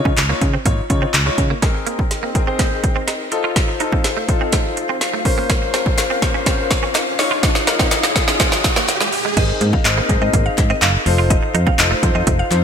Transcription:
Already playing: D#4 F4 C#5
0.05 C#3 C#4, kick
0.17 C#2, clap, closed hi-hat
0.29 A#3 D#4 F4 C#5
0.41 C#3, muted clean electric guitar stroke, kick, closed hi-hat
0.54 C4
0.66 G#1 A#3 D#4 F4 C#5, kick, closed hi-hat
0.90 C#3 D#4 F4 C#5, muted clean electric guitar stroke, kick, closed hi-hat
1.02 C4
1.14 C#2, clap, closed hi-hat
1.26 G#3 D#4 F4 C#5
1.38 C#3, muted clean electric guitar stroke, kick, closed hi-hat
1.50 A#3
1.62 G#3 C4 D#4 G#4 A#4 D#5, kick, snare, closed hi-hat, riser
1.74 muted clean electric guitar stroke
1.87 A#3, closed hi-hat
1.99 kick
2.11 snare, closed hi-hat
2.23 A#3
2.35 C4 G#4 A#4, muted clean electric guitar stroke, kick, closed hi-hat
2.47 C4 G#4 C5
2.59 A#3, kick, snare, closed hi-hat
2.84 muted clean electric guitar stroke, kick, closed hi-hat
2.96 C4
3.08 D#4, snare, closed hi-hat
3.32 D#4 F4 A4 C5 F5, muted clean electric guitar stroke, closed hi-hat
3.44 F4
3.56 kick, snare, closed hi-hat
3.68 muted clean electric guitar stroke
3.80 D#4 F4 A4, closed hi-hat
3.92 C4, kick
4.04 snare, closed hi-hat
4.17 A3
4.28 D#4 F4 A4, muted clean electric guitar stroke, kick, closed hi-hat
4.41 C4
4.52 A3, kick, snare, closed hi-hat
4.77 muted clean electric guitar stroke, closed hi-hat
4.89 C4
5.01 snare, closed hi-hat
5.14 A3
5.25 C#4 A#4 C5, muted clean electric guitar stroke, kick, open hi-hat
5.38 A#3
5.50 A#3, kick, snare, closed hi-hat
5.62 muted clean electric guitar stroke
5.74 C4, snare, closed hi-hat
5.86 kick
5.98 snare, clap, closed hi-hat
6.10 C4
6.22 C#4 A#4 C5, muted clean electric guitar stroke, kick, snare, closed hi-hat
6.34 C#4 A#4 C5
6.46 C4, kick, snare, closed hi-hat
6.71 muted clean electric guitar stroke, kick, snare, closed hi-hat
6.83 C#4
6.95 D#4, snare, clap, closed hi-hat
7.19 D#4 F4 G#4 C#5, muted clean electric guitar stroke, snare, open hi-hat
7.31 F4
7.43 kick, snare, closed hi-hat
7.55 muted clean electric guitar stroke, snare
7.67 D#4 F4 A#4, snare, closed hi-hat
7.79 C4, kick, snare
7.91 snare, clap, closed hi-hat
8.03 D#4, snare
8.16 D#4 F4 G#4, muted clean electric guitar stroke, kick, snare, closed hi-hat
8.28 C#4, snare
8.40 C4, kick, snare, closed hi-hat
8.52 snare
8.64 muted clean electric guitar stroke, kick, snare, closed hi-hat
8.76 A#3, snare
8.88 snare, clap, closed hi-hat
9.01 G#3, snare
9.12 muted clean electric guitar stroke, open hi-hat
9.25 G#3
9.37 G#1 G#3 C4 D#4 G#4 A#4 C5 D#5, kick, closed hi-hat, crash
9.49 muted clean electric guitar stroke
9.61 G#2 A#3, closed hi-hat
9.73 F5, kick
9.85 G#1 D#4 G#4 A#4 C5 D#5, clap, closed hi-hat
9.98 A#3
10.09 G#2 D#4 G#4 A#4 C5, muted clean electric guitar stroke, kick, closed hi-hat
10.22 G#2 C4 D#5
10.33 G#1 A#3, kick, closed hi-hat
10.46 F5
10.58 G#2, muted clean electric guitar stroke, kick, clap, closed hi-hat
10.70 C4 D#5
10.82 F#1 D#4 F5, clap, closed hi-hat
11.06 F1 D#4 F4 A4 C5 F5, muted clean electric guitar stroke, open hi-hat
11.18 F4
11.30 D#5, kick, closed hi-hat
11.43 muted clean electric guitar stroke
11.54 F2 D#4, closed hi-hat
11.67 C4 F5, kick
11.79 F1 D#4 F4 A4 C5 D#5, clap, closed hi-hat
11.91 A3
12.03 F2 D#4 F4 A4 C5, muted clean electric guitar stroke, kick, closed hi-hat
12.15 F2 C4 D#5
12.27 F1 A3, kick, closed hi-hat
12.39 F5
12.51 F2 D#4 F4 A4 C5, muted clean electric guitar stroke, clap, closed hi-hat

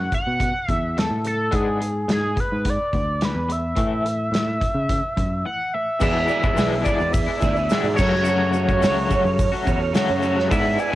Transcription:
Already playing: F#5
0.12 F#2 C#3 F#5, kick, closed hi-hat
0.27 B2
0.40 F#2 C#3, kick, closed hi-hat
0.68 E2 F#2 C#3 E5, kick, closed hi-hat
0.97 F#2 C#3 A4, snare, closed hi-hat
1.10 A2
1.24 F#2 C#3 A4, closed hi-hat
1.51 G#2 G#3 B3 D4, kick, closed hi-hat
1.55 G#4
1.80 G#3 B3, closed hi-hat
2.08 G#2 G#3 B3 G#4, snare, closed hi-hat
2.36 G#3 B3 B4, kick, closed hi-hat
2.52 G#2
2.65 G#3 B3, kick, closed hi-hat
2.70 D5
2.93 D2 G#3 B3, kick, closed hi-hat
3.21 G#3 B3 B4, snare, closed hi-hat
3.35 E2
3.49 G#3 B3 E5, closed hi-hat
3.76 A2 E3 A3, kick, closed hi-hat
4.05 A2 E3, closed hi-hat
4.32 A2 E3, snare, closed hi-hat
4.61 A2 E3, kick, closed hi-hat
4.74 C#3
4.89 A2 E3, kick, closed hi-hat
5.17 F#2 A2 E3, kick, closed hi-hat
5.45 A2 E3 F#5
5.74 A2 E3 E5
5.99 E2 B2 E3 G#3 B3 D4 E4 G#4 D5 E5, kick, crash, shaker
6.28 B3 E4 G#4 D5, shaker
6.41 B3 D4 E4 G#4 D5, kick, shaker
6.45 E3 G#3
6.55 B1 E2 B2 E3 G#3 B3 D4 E4 G#4 D5, open hi-hat, shaker
6.59 E4, snare
6.83 E3 G#3 B3 D4 E4 G#4 D5, kick, shaker
6.88 E4
6.97 E2 B3 E4 G#4 D5, muted clean electric guitar stroke, shaker
7.12 E5, kick, open hi-hat, shaker
7.27 E3 G#3 D4 E4
7.40 D2 B3 E4 G#4 D5, kick, snare, shaker
7.55 B3 E4 G#4 D5, muted clean electric guitar stroke, shaker
7.69 E2 B2 E3 G#3 B3 E4 G#4 D5, snare, open hi-hat, shaker
7.73 D4 E4
7.83 G#2 B3 E4 G#4 D5, shaker
7.96 F#2 F#3 C#4 F#4 A4 C#5, kick, shaker
8.00 C#3 F#3 A3 C#4 F#4, crash
8.11 C#4 F#4 A4 C#5, snare
8.15 F#3 A3
8.23 F#2 C#3 F#3 C#4 F#4 A4 C#5, shaker
8.28 A3 C#4 F#4 C#5
8.52 C#4 F#4 A4 C#5, shaker
8.67 C#4 F#4 A4 C#5, kick, shaker
8.72 F#3 A3
8.81 C#2 F#2 C#3 F#3 A3 C#4 F#4 A4 C#5, snare, open hi-hat, shaker
9.09 F#3 A3 C#4 F#4 A4 C#5, kick, shaker
9.23 F#2 F#4 A4 C#5, muted clean electric guitar stroke, shaker
9.39 kick, open hi-hat, shaker
9.52 F#3 A3 C#4 F#4
9.65 E2 C#4 F#4 A4 C#5, kick, shaker
9.79 F#4 A4 C#5, muted clean electric guitar stroke
9.93 F#2 C#3 F#3 A3 C#4 F#4 A4 C#5, snare, open hi-hat, shaker
9.97 F#4
10.07 F#2 F#4 A4 C#5, shaker
10.20 F#3 A3 C#4 F#4 A4 C#5, shaker
10.25 F#4
10.34 C#4 F#4 A4 C#5
10.38 F#3 A3, snare
10.48 G#3 B3 E4 G#4 D5 E5, kick
10.52 G#2 D4 E4, open hi-hat, shaker
10.76 B3 E4 G#4 D5 G#5, shaker
10.90 E4 G#4 D5

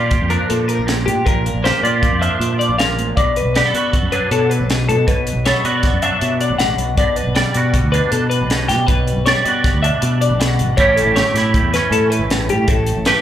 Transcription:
Already playing: A#2 A#3 F4 G4 D5
0.11 kick, closed hi-hat
0.22 F2
0.30 F3 D4 A#4, closed hi-hat
0.49 A#2 A4, closed hi-hat
0.68 A#4, closed hi-hat
0.79 A#1
0.87 A#2, snare, closed hi-hat
1.06 A#2 G4, closed hi-hat
1.25 A#1 A#2 A#4, kick, closed hi-hat
1.46 closed hi-hat
1.55 A#1
1.64 A#3 G4 C5, snare, closed hi-hat
1.83 A#2 F4 D5, closed hi-hat
2.03 kick, closed hi-hat
2.12 F2
2.21 F3 D4 E5, closed hi-hat
2.40 A#2, closed hi-hat
2.59 D5, closed hi-hat
2.69 A#1
2.79 A#2 F5, snare, closed hi-hat
2.97 A1, closed hi-hat
3.17 B1 B2 D5, kick, closed hi-hat
3.36 B4, closed hi-hat
3.45 B1
3.55 B3 G4 D5, snare, closed hi-hat
3.66 A4
3.74 B2 F#4, closed hi-hat
3.93 kick, closed hi-hat
4.02 F#2
4.12 F#3 D4 B4, closed hi-hat
4.31 B2 A4, closed hi-hat
4.50 B4, closed hi-hat
4.60 B1
4.70 B2, snare, closed hi-hat
4.89 B2 A4, closed hi-hat
5.07 B1 B2 B4, kick, closed hi-hat
5.27 closed hi-hat
5.36 B1
5.45 B3 A4 C#5, snare, closed hi-hat
5.64 B2 F#4 D5, closed hi-hat
5.83 kick, snare, closed hi-hat
5.93 F#2
6.02 F#3 D4 E5, closed hi-hat
6.21 B2, closed hi-hat
6.41 D5, closed hi-hat
6.50 B1
6.59 A1 B2 F#5, snare, closed hi-hat
6.78 B1, closed hi-hat
6.97 B1 B2 D5, kick, closed hi-hat
7.16 B4, closed hi-hat
7.27 B1
7.35 G3 D5, snare, closed hi-hat
7.54 B2 F#4, closed hi-hat
7.74 kick, closed hi-hat
7.84 D2
7.92 B2 D4 B4, closed hi-hat
8.11 B2 A4, closed hi-hat
8.30 B4, closed hi-hat
8.41 B1
8.50 B2, snare, closed hi-hat
8.69 B2 G4, snare, closed hi-hat
8.87 B1 B2 B4, kick, closed hi-hat
9.07 closed hi-hat
9.17 B1
9.26 G3 C#5 D5, snare, closed hi-hat
9.45 B2 F#4 D5, closed hi-hat
9.64 kick, snare, closed hi-hat
9.74 D2
9.83 B2 D4 E5, closed hi-hat
10.02 B2, closed hi-hat
10.21 D5, closed hi-hat
10.30 B1
10.40 B2 F#5, snare, closed hi-hat
10.59 G#1, closed hi-hat
10.77 A1 A2 A3 C#4 E4 G4 C#5, kick, closed hi-hat
10.96 A4, closed hi-hat
11.06 A1
11.16 A3 G4 C#5, snare, closed hi-hat
11.34 A2 E4, snare, closed hi-hat
11.54 kick, closed hi-hat
11.62 E2
11.74 E3 C#4 B4, snare, closed hi-hat
11.91 A2 A4, closed hi-hat
12.10 B4, closed hi-hat
12.19 A1
12.30 A2, snare, closed hi-hat
12.48 A2 G4, closed hi-hat
12.68 A1 A2 A4, kick, closed hi-hat
12.86 closed hi-hat
12.97 A1
13.05 A3 G4 B4, snare, closed hi-hat

